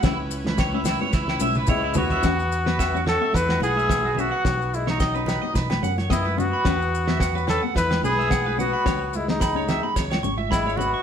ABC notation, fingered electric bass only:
X:1
M:4/4
L:1/8
Q:"Swing 16ths" 1/4=109
K:E
V:1 name="Fingered electric bass" clef=bass
C,,4 C,, B,,, C,, D,, | E,,4 E,, B,,,3 | B,,,4 B,,, F,,3 | E,,4 E,, B,,,3 |
C,,4 C,, G,,,3 |]